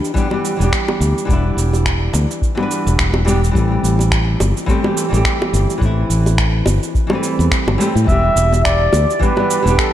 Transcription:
Already playing: nylon-string guitar E3 G3 B3 D4 G4
0.04 cabasa
0.14 nylon-string guitar E3 G3 B3 D4, kick, cabasa
0.18 nylon-string guitar G4
0.30 nylon-string guitar E3 G3 B3 D4 G4, high bongo
0.45 cabasa
0.57 fingered electric bass E1, nylon-string guitar E3 G3 B3
0.61 nylon-string guitar D4 G4, cabasa
0.72 finger snap, kick, cabasa
0.88 high bongo
1.00 fingered electric bass D2, cabasa
1.18 cabasa
1.25 fingered electric bass E1, nylon-string guitar E3 G3 B3, kick
1.30 nylon-string guitar D4 E4, cabasa
1.57 fingered electric bass E1, cabasa
1.73 high bongo, cabasa
1.85 finger snap, kick, cabasa
2.13 fingered electric bass D2, high bongo, cabasa
2.31 cabasa
2.42 kick, cabasa
2.55 nylon-string guitar E3 G3 B3, high bongo
2.61 nylon-string guitar D4 B4
2.71 cabasa
2.87 fingered electric bass E1, cabasa
2.98 finger snap, kick, cabasa
3.14 high bongo
3.25 nylon-string guitar E3 G3 B3 D4, cabasa
3.29 nylon-string guitar G4
3.44 cabasa
3.51 fingered electric bass A1, nylon-string guitar E3 G3 A3, kick
3.56 nylon-string guitar C4 G4, cabasa
3.83 fingered electric bass A1, cabasa
3.99 high bongo, cabasa
4.12 finger snap, kick, cabasa
4.40 fingered electric bass G1, high bongo, cabasa
4.57 cabasa
4.66 nylon-string guitar E3 G3 A3 C4, kick, cabasa
4.70 nylon-string guitar G4
4.82 nylon-string guitar E3 G3 A3 C4 G4, high bongo
4.97 cabasa
5.09 fingered electric bass A1, nylon-string guitar E3 G3 A3
5.14 nylon-string guitar C4 G4, cabasa
5.25 finger snap, kick, cabasa
5.42 high bongo
5.53 fingered electric bass G1, cabasa
5.70 cabasa
5.78 fingered electric bass A1, nylon-string guitar E3 G3, kick
5.82 nylon-string guitar A3 C4 E4, cabasa
6.10 fingered electric bass A1, cabasa
6.26 high bongo, cabasa
6.38 finger snap, kick, cabasa
6.66 fingered electric bass G1, high bongo, cabasa
6.83 cabasa
6.95 kick, cabasa
7.07 nylon-string guitar E3 G3, high bongo
7.11 nylon-string guitar A3 C4 B4
7.23 cabasa
7.39 fingered electric bass E2, cabasa
7.51 finger snap, kick, cabasa
7.67 fingered electric bass G1, high bongo
7.78 nylon-string guitar E3 G3 A3 C4, cabasa
7.82 nylon-string guitar G4
7.95 fingered electric bass A2, cabasa
8.04 fingered electric bass E1, nylon-string guitar E3 G3 B3, flugelhorn E5, kick
8.09 nylon-string guitar D4 G4, cabasa
8.36 fingered electric bass E1, cabasa
8.52 high bongo, cabasa
8.64 flugelhorn D5, finger snap, kick, cabasa
8.93 fingered electric bass D2, high bongo, cabasa
9.10 cabasa
9.19 nylon-string guitar E3 G3 B3 D4 G4, flugelhorn B4, kick, cabasa
9.36 nylon-string guitar E3 G3 B3 D4, high bongo
9.40 nylon-string guitar G4
9.50 cabasa
9.62 fingered electric bass E1, nylon-string guitar E3 G3 B3
9.67 nylon-string guitar D4 G4, cabasa
9.78 flugelhorn A4, finger snap, kick, cabasa

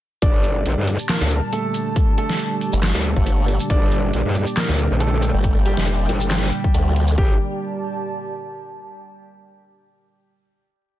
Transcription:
0.22 wobble bass G1, analog synth pad A#2 D3 G3, grand piano D4 D5, ambient pad G4, kick, closed hi-hat
0.44 closed hi-hat
0.55 ambient pad A5
0.66 wobble bass A#1, closed hi-hat
0.77 wobble bass G2
0.87 ambient pad D5, open hi-hat
0.99 shaker
1.09 grand piano A#3 A#4, snare, clap, closed hi-hat
1.21 wobble bass D2
1.31 closed hi-hat, shaker
1.53 grand piano A3 A4, closed hi-hat
1.74 closed hi-hat, shaker
1.96 kick, closed hi-hat
2.18 grand piano A3 A4, closed hi-hat
2.30 snare
2.40 closed hi-hat
2.61 open hi-hat
2.73 wobble bass G1, shaker
2.83 snare, clap, closed hi-hat
2.95 wobble bass D2
3.05 closed hi-hat
3.16 wobble bass G1, kick
3.27 closed hi-hat
3.48 closed hi-hat
3.60 shaker
3.70 wobble bass G1, grand piano D4 D5, kick, closed hi-hat
3.92 closed hi-hat
4.13 wobble bass A#1, closed hi-hat
4.25 wobble bass G2, ambient pad G5
4.35 open hi-hat
4.47 shaker
4.57 grand piano A#3 A#4, snare, clap, closed hi-hat
4.69 wobble bass D2
4.79 closed hi-hat, shaker
4.90 wobble bass A#1
5.00 grand piano A3 A4, closed hi-hat
5.22 closed hi-hat, shaker
5.34 wobble bass G1
5.44 kick, closed hi-hat
5.66 grand piano G3 G4, closed hi-hat
5.77 wobble bass F1, snare
5.87 closed hi-hat
6.09 wobble bass G1, open hi-hat
6.21 shaker
6.31 snare, clap, closed hi-hat
6.53 closed hi-hat
6.64 kick
6.74 wobble bass D2, closed hi-hat
6.96 closed hi-hat
7.08 shaker
7.18 wobble bass G1, analog synth pad G3 G4 A#4 D5, grand piano G4, ambient pad G4, kick
7.25 ambient pad D5
7.31 ambient pad A5

